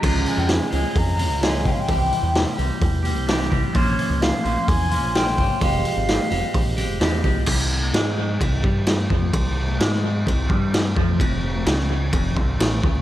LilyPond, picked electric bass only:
\new Staff \with { instrumentName = "Picked electric bass" } { \clef bass \time 4/4 \tempo 4 = 129 des,8 r16 f,8 r16 des,16 r16 f,8. des,8. des16 r16 | c,8 r16 e,8 r16 c,16 r16 e,8. c,8. c,16 r16 | bes,,8 r16 des,8 r16 bes,,16 r16 e,8. bes,,8. g,,16 r16 | f,,8 r16 aes,,8 r16 f,,16 r16 bes,,8. f,,16 e,8 c,8 |
c,4 aes,4 c,8 g,4 f,8 | c,4 aes,4 c,8 g,4 f,8 | f,,4 des,4 f,,8 c,8 a,,8 des,8 | }